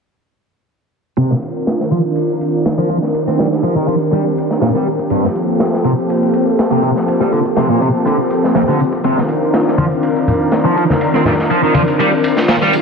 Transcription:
1.17 1.30 C3 medium
1.17 5.07 D#3 medium
1.17 12.82 C4 medium
1.17 5.07 D4 medium
1.17 3.13 F4 medium
1.17 5.07 A#4 medium
1.17 kick loud
1.17 ride medium
1.17 tambourine soft
1.31 snare soft
1.42 ride medium
1.42 tambourine medium
1.55 tambourine soft
1.67 snare loud
1.67 ride medium
1.67 tambourine soft
1.80 snare medium
1.91 1.97 F3 medium
1.91 kick medium
1.91 ride medium
1.91 tambourine medium
2.04 tambourine soft
2.15 ride medium
2.15 tambourine soft
2.29 ride soft
2.41 ride medium
2.41 tambourine medium
2.54 tambourine soft
2.65 snare loud
2.65 ride medium
2.65 tambourine soft
2.77 2.89 F3 medium
2.77 ride soft
2.77 tambourine soft
2.89 2.96 F3 medium
2.89 kick medium
2.89 ride medium
2.89 tambourine medium
3.02 snare soft
3.14 9.00 G4 medium
3.14 ride medium
3.14 tambourine soft
3.28 3.36 C4 medium
3.28 snare soft
3.39 3.45 G3 medium
3.39 snare medium
3.39 ride medium
3.39 tambourine medium
3.52 snare soft
3.52 tambourine soft
3.64 3.73 F3 medium
3.64 kick medium
3.64 ride medium
3.64 tambourine soft
3.76 3.88 D#3 medium
3.88 3.94 F3 medium
3.88 ride medium
3.88 tambourine medium
4.01 ride soft
4.01 tambourine soft
4.12 4.23 G3 medium
4.12 ride medium
4.12 tambourine soft
4.37 ride medium
4.37 tambourine medium
4.50 snare soft
4.50 tambourine soft
4.62 4.68 A#2 medium
4.62 snare loud
4.62 ride medium
4.62 tambourine soft
4.74 4.86 G3 medium
4.74 snare soft
4.74 tambourine soft
4.86 ride medium
4.86 tambourine medium
4.99 kick medium
4.99 tambourine soft
5.10 5.24 G2 medium
5.10 9.00 F3 medium
5.10 9.01 A#3 medium
5.10 9.00 A4 medium
5.10 kick loud
5.10 ride medium
5.10 tambourine soft
5.24 snare soft
5.35 ride medium
5.35 tambourine medium
5.49 tambourine soft
5.60 snare loud
5.60 ride medium
5.60 tambourine soft
5.73 snare medium
5.84 5.91 C3 medium
5.84 kick medium
5.84 ride medium
5.84 tambourine medium
5.98 tambourine soft
6.09 ride medium
6.09 tambourine soft
6.23 ride soft
6.33 ride medium
6.33 tambourine medium
6.47 tambourine soft
6.58 snare loud
6.58 ride medium
6.58 tambourine soft
6.71 6.82 C3 medium
6.71 ride soft
6.71 tambourine soft
6.83 6.89 C3 medium
6.83 kick medium
6.83 ride medium
6.83 tambourine medium
6.96 snare soft
6.96 tambourine soft
7.08 ride medium
7.08 tambourine soft
7.20 7.30 G3 medium
7.20 snare soft
7.20 tambourine soft
7.32 7.38 D3 medium
7.32 ride medium
7.32 tambourine medium
7.45 kick medium
7.45 tambourine soft
7.57 7.67 C3 medium
7.57 snare loud
7.57 ride medium
7.57 tambourine soft
7.70 7.81 A#2 medium
7.70 kick medium
7.81 7.87 C3 medium
7.81 kick medium
7.81 ride medium
7.81 tambourine medium
7.94 tambourine soft
8.06 8.16 D3 medium
8.06 ride medium
8.06 tambourine soft
8.30 ride medium
8.30 tambourine medium
8.44 snare soft
8.44 tambourine soft
8.55 8.61 F2 medium
8.55 snare loud
8.55 ride medium
8.55 tambourine soft
8.68 8.79 D3 medium
8.68 snare soft
8.68 tambourine soft
8.80 ride medium
8.80 tambourine medium
8.93 kick medium
8.93 tambourine soft
9.04 9.17 C3 medium
9.04 12.82 D#3 medium
9.04 12.82 D4 medium
9.04 12.82 F4 medium
9.04 12.82 A#4 medium
9.04 kick loud
9.04 ride medium
9.04 tambourine soft
9.17 snare soft
9.29 ride medium
9.29 tambourine medium
9.42 tambourine soft
9.53 snare loud
9.53 ride medium
9.53 tambourine soft
9.67 snare soft
9.78 9.84 F3 medium
9.78 kick medium
9.78 ride medium
9.78 tambourine medium
9.78 high conga medium
9.91 tambourine soft
10.03 ride medium
10.03 tambourine soft
10.16 ride soft
10.27 ride medium
10.27 tambourine medium
10.27 low conga medium
10.41 tambourine soft
10.52 snare loud
10.52 ride medium
10.52 tambourine soft
10.64 10.76 F3 medium
10.64 ride soft
10.64 tambourine soft
10.76 10.83 F3 medium
10.76 kick medium
10.76 ride medium
10.76 tambourine medium
10.90 snare soft
10.90 tambourine soft
10.90 high conga medium
11.01 ride medium
11.01 tambourine soft
11.14 11.23 C4 medium
11.14 snare medium
11.25 11.32 G3 medium
11.25 snare loud
11.25 ride medium
11.25 tambourine medium
11.25 low conga medium
11.39 snare soft
11.39 tambourine soft
11.50 11.60 F3 medium
11.50 kick medium
11.50 ride medium
11.50 tambourine soft
11.63 11.74 D#3 medium
11.74 11.81 F3 medium
11.74 ride medium
11.74 tambourine medium
11.74 high conga medium
11.88 ride soft
11.88 tambourine soft
11.99 12.09 G3 loud
11.99 ride medium
11.99 tambourine soft
12.24 ride medium
12.24 tambourine medium
12.37 snare soft
12.37 tambourine soft
12.48 12.55 A#2 medium
12.48 snare loud
12.48 ride medium
12.48 tambourine soft
12.61 12.73 G3 medium
12.61 snare soft
12.61 tambourine soft
12.73 ride medium
12.73 tambourine medium

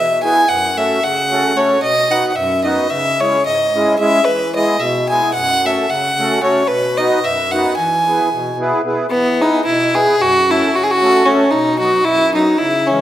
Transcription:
0.00 0.37 B2 medium
0.00 0.22 E5 medium
0.24 0.45 B3 medium
0.24 0.45 E4 medium
0.24 0.45 G#4 medium
0.24 0.46 B4 medium
0.24 0.50 G#5 medium
0.49 0.91 F#2 medium
0.49 0.79 F#5 medium
0.76 0.99 A3 soft
0.76 0.99 C#4 soft
0.76 1.00 F#4 soft
0.76 1.00 A4 medium
0.76 1.05 E5 medium
1.04 1.44 C#3 medium
1.04 1.58 F#5 medium
1.31 1.53 A3 medium
1.31 1.52 C#4 medium
1.31 1.53 F#4 medium
1.31 1.53 A4 medium
1.55 1.77 A3 medium
1.55 1.77 C#4 medium
1.55 1.77 F#4 medium
1.55 1.78 A4 medium
1.55 1.82 C#5 medium
1.80 2.23 B2 medium
1.80 2.13 D#5 loud
2.10 2.32 B3 medium
2.10 2.32 D#4 medium
2.10 2.32 F#4 medium
2.10 2.33 B4 medium
2.10 2.30 F#5 medium
2.30 2.37 F#5 medium
2.36 2.78 F#2 medium
2.36 2.64 E5 medium
2.64 2.87 B3 medium
2.64 2.87 D#4 medium
2.64 2.87 F#4 soft
2.64 2.88 B4 medium
2.64 2.92 D#5 medium
2.90 3.33 C#3 medium
2.90 3.22 E5 medium
3.20 3.42 G#3 soft
3.20 3.42 C#4 soft
3.20 3.43 E4 medium
3.20 3.43 G#4 soft
3.20 3.46 C#5 medium
3.46 3.86 G#2 medium
3.46 3.96 D#5 medium
3.74 3.96 G#3 medium
3.74 3.96 C#4 medium
3.74 3.96 E4 medium
3.74 3.97 G#4 medium
3.99 4.20 G#3 medium
3.99 4.21 C#4 medium
3.99 4.21 E4 medium
3.99 4.21 G#4 medium
3.99 4.26 E5 loud
4.25 4.67 E3 medium
4.25 4.54 B4 medium
4.56 4.76 G#3 medium
4.56 4.76 B3 medium
4.56 4.77 E4 medium
4.56 4.77 G#4 medium
4.56 4.81 D#5 medium
4.79 5.21 B2 medium
4.79 5.09 E5 medium
5.09 5.31 G#3 medium
5.09 5.31 B3 medium
5.09 5.31 E4 medium
5.09 5.31 G#4 medium
5.09 5.33 G#5 medium
5.34 5.77 F#2 medium
5.34 5.67 F#5 loud
5.64 5.86 A3 medium
5.64 5.86 C#4 soft
5.64 5.86 F#4 soft
5.64 5.86 A4 medium
5.64 5.91 E5 medium
5.90 6.30 C#3 medium
5.90 6.43 F#5 medium
6.18 6.39 A3 medium
6.18 6.39 C#4 medium
6.18 6.40 F#4 medium
6.18 6.40 A4 medium
6.40 6.62 A3 medium
6.40 6.63 C#4 medium
6.40 6.63 F#4 medium
6.40 6.63 A4 medium
6.40 6.69 C#5 medium
6.68 7.10 B2 medium
6.68 6.99 B4 loud
6.98 7.19 B3 medium
6.98 7.19 D#4 medium
6.98 7.19 F#4 medium
6.98 7.19 B4 medium
6.98 7.25 D#5 medium
7.24 7.65 F#2 medium
7.24 7.53 E5 medium
7.52 7.74 B3 medium
7.52 7.74 D#4 medium
7.52 7.75 F#4 medium
7.52 7.75 B4 medium
7.52 7.76 F#5 medium
7.77 8.20 E3 medium
7.77 8.56 G#5 medium
8.07 8.28 B3 medium
8.07 8.29 E4 soft
8.07 8.29 G#4 soft
8.07 8.30 B4 soft
8.33 8.73 B2 medium
8.60 8.81 B3 medium
8.60 8.81 E4 medium
8.60 8.81 G#4 medium
8.60 8.82 B4 medium
8.86 9.06 B3 medium
8.86 9.07 E4 medium
8.86 9.07 G#4 medium
8.86 9.07 B4 medium
9.10 9.52 E3 medium
9.10 9.43 B3 loud
9.39 9.60 B3 medium
9.39 9.65 D#4 medium
9.39 9.61 E4 medium
9.39 9.61 G#4 medium
9.39 9.62 B4 medium
9.65 10.07 B2 medium
9.65 9.97 E4 medium
9.94 10.15 B3 medium
9.94 10.15 E4 medium
9.94 10.23 G#4 medium
9.94 10.16 G#4 soft
9.94 10.16 B4 medium
10.20 10.61 F#2 medium
10.20 10.52 F#4 loud
10.48 10.70 A3 medium
10.48 10.70 C#4 soft
10.48 10.78 E4 medium
10.48 10.70 F#4 soft
10.48 10.70 A4 medium
10.74 11.14 C#3 medium
10.74 10.85 F#4 medium
10.84 10.92 G#4 medium
10.91 11.27 F#4 loud
11.01 11.22 A3 medium
11.01 11.22 C#4 medium
11.01 11.23 F#4 medium
11.01 11.23 A4 medium
11.26 11.47 A3 medium
11.26 11.52 C#4 medium
11.26 11.47 C#4 medium
11.26 11.48 F#4 medium
11.26 11.48 A4 medium
11.51 11.93 B2 medium
11.51 11.79 D#4 medium
11.80 12.02 F#3 medium
11.80 12.02 B3 medium
11.80 12.02 D#4 medium
11.80 12.06 F#4 medium
11.80 12.02 F#4 medium
12.05 12.47 F#2 medium
12.05 12.34 E4 loud
12.34 12.56 F#3 medium
12.34 12.56 B3 medium
12.34 12.60 D#4 medium
12.34 12.56 D#4 medium
12.34 12.57 F#4 medium
12.58 13.01 C#3 medium
12.58 12.89 E4 medium
12.87 13.01 E3 soft
12.87 13.01 G#3 soft
12.87 13.01 C#4 medium
12.91 13.01 C#4 soft
12.91 13.01 E4 medium

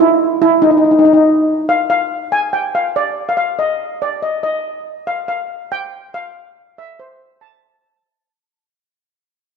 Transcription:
0.00 0.40 E4 loud
0.42 0.64 E4 loud
0.62 0.70 D#4 loud
0.71 0.76 D#4 medium
0.77 0.83 D#4 medium
0.84 0.90 D#4 medium
0.91 0.98 D#4 medium
0.99 1.04 D#4 medium
1.05 1.12 D#4 medium
1.13 1.22 D#4 medium
1.69 1.89 F5 medium
1.90 2.34 F5 medium
2.32 2.54 G#5 medium
2.53 2.73 G5 medium
2.75 2.97 F5 medium
2.96 3.29 D5 medium
3.29 3.36 F5 medium
3.37 3.57 F5 medium
3.59 4.03 D#5 medium
4.02 4.24 D5 medium
4.22 4.42 D#5 medium
4.43 4.83 D#5 medium
5.07 5.17 F5 medium
5.28 5.72 F5 medium
5.72 6.15 G5 medium
6.14 6.80 F5 medium
6.78 7.00 E5 medium
7.00 7.39 C5 medium
7.41 8.22 A5 medium

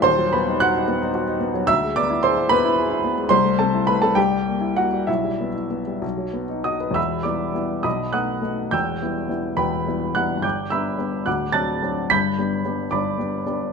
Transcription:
0.02 1.64 D#1 medium
0.02 1.65 D#2 medium
0.02 0.31 C5 loud
0.02 0.33 C6 loud
0.18 0.42 F#3 medium
0.33 0.57 B3 medium
0.33 0.60 B4 medium
0.33 0.62 B5 medium
0.48 0.70 D#4 medium
0.60 0.84 F#4 medium
0.60 1.65 F#5 medium
0.60 1.68 F#6 loud
0.76 0.98 D#4 medium
0.88 1.10 B3 medium
1.02 1.23 D#4 medium
1.15 1.36 F#4 medium
1.28 1.49 D#4 medium
1.41 1.63 B3 medium
1.54 1.68 F#3 medium
1.67 3.26 D2 medium
1.67 1.94 E5 medium
1.67 1.95 E6 loud
1.83 2.05 G#3 medium
1.96 2.18 B3 medium
1.96 2.22 D5 medium
1.96 2.23 D6 loud
2.10 2.32 E4 medium
2.23 2.45 G#4 medium
2.23 2.49 C5 medium
2.23 2.50 C6 loud
2.37 2.58 E4 medium
2.49 2.72 B3 medium
2.49 3.27 B4 medium
2.49 3.30 B5 loud
2.65 2.85 E4 medium
2.78 2.99 G#4 medium
2.91 3.12 E4 medium
3.04 3.25 B3 medium
3.18 3.31 G#3 medium
3.29 4.14 C2 medium
3.29 3.56 C5 medium
3.29 3.58 C6 loud
3.44 3.67 A3 medium
3.59 3.82 C3 medium
3.59 3.86 A4 medium
3.59 3.87 A5 medium
3.74 3.97 E4 soft
3.87 4.11 A3 medium
3.87 4.01 B4 medium
3.87 4.01 B5 medium
4.02 4.16 C3 medium
4.02 4.16 A4 medium
4.02 4.16 A5 medium
4.15 5.05 C2 medium
4.15 4.73 G4 medium
4.15 4.76 G5 loud
4.31 4.55 G3 soft
4.47 4.71 A#3 medium
4.61 4.86 E4 medium
4.76 5.02 A#3 medium
4.76 5.06 F#4 medium
4.76 5.08 F#5 medium
4.93 5.08 G3 soft
5.07 6.00 B1 medium
5.07 5.54 E4 medium
5.07 6.03 E5 medium
5.24 5.49 G3 soft
5.40 5.65 B3 soft
5.55 5.81 E4 soft
5.70 5.96 B3 soft
5.87 6.03 G3 soft
6.02 6.93 B1 medium
6.17 6.43 F#3 soft
6.33 6.59 B3 soft
6.49 6.75 D#4 soft
6.64 6.90 F#4 medium
6.64 6.94 D#5 medium
6.64 6.96 D#6 medium
6.81 6.96 B4 soft
6.90 7.22 E1 soft
6.90 7.22 E2 medium
6.90 7.25 E6 medium
6.95 7.23 E5 medium
6.95 7.23 B5 medium
7.23 7.52 G3 soft
7.23 7.52 B3 soft
7.23 7.52 E4 soft
7.23 7.80 D5 medium
7.23 7.83 D6 medium
7.54 7.81 G3 soft
7.54 7.81 B3 soft
7.54 7.82 E4 soft
7.83 8.13 B1 medium
7.83 8.12 B2 medium
7.83 8.12 D#5 medium
7.83 8.12 B5 medium
7.83 8.12 D#6 medium
8.13 8.40 A3 soft
8.13 8.40 B3 soft
8.13 8.40 D#4 soft
8.13 8.68 F#5 medium
8.13 8.68 D#6 medium
8.13 8.72 F#6 medium
8.41 8.68 A3 soft
8.41 8.69 B3 soft
8.41 8.69 D#4 soft
8.71 9.00 E1 medium
8.71 9.00 E2 medium
8.71 9.54 G5 medium
8.71 9.54 E6 medium
8.71 9.57 G6 medium
9.02 9.27 G3 soft
9.02 9.27 B3 soft
9.02 9.28 E4 soft
9.29 9.55 G3 soft
9.29 9.55 B3 soft
9.29 9.55 E4 soft
9.57 9.85 E1 medium
9.57 9.85 E2 medium
9.57 10.11 B4 medium
9.57 10.11 G5 medium
9.57 10.15 B5 medium
9.87 10.13 G3 soft
9.87 10.13 B3 soft
9.87 10.13 E4 soft
10.15 10.41 G3 soft
10.15 10.42 B3 soft
10.15 10.42 E4 soft
10.15 10.42 F#5 medium
10.15 10.44 F#6 medium
10.37 10.67 G2 medium
10.42 10.70 G1 medium
10.42 10.69 G5 medium
10.42 10.69 D6 medium
10.42 10.70 G6 medium
10.70 10.96 G3 soft
10.70 10.96 B3 soft
10.70 10.96 D4 soft
10.70 11.22 E5 medium
10.70 11.23 B5 medium
10.70 11.26 E6 medium
10.98 11.23 G3 soft
10.98 11.23 B3 soft
10.98 11.24 D4 soft
11.26 11.53 D1 medium
11.26 11.54 D2 medium
11.26 11.52 F#5 medium
11.26 11.53 D6 medium
11.26 11.52 F#6 medium
11.52 11.79 F#3 soft
11.52 11.79 C4 soft
11.52 11.80 D4 soft
11.52 12.06 A5 medium
11.52 12.06 F#6 medium
11.52 12.09 A6 medium
11.82 12.07 F#3 soft
11.82 12.07 C4 soft
11.82 12.08 D4 soft
12.10 12.37 G1 medium
12.10 12.37 G2 medium
12.10 12.86 B5 medium
12.10 12.86 G6 medium
12.10 12.90 B6 loud
12.38 12.61 G3 soft
12.38 12.62 B3 soft
12.38 12.62 D4 soft
12.65 12.88 G3 soft
12.65 12.88 B3 soft
12.65 12.89 D4 medium
12.91 13.17 G1 medium
12.91 13.17 G2 medium
12.91 13.41 D5 medium
12.91 13.41 B5 medium
12.91 13.44 D6 medium
13.18 13.42 G3 soft
13.18 13.42 B3 soft
13.18 13.43 D4 soft
13.46 13.70 G3 soft
13.46 13.70 B3 soft
13.46 13.70 D4 medium

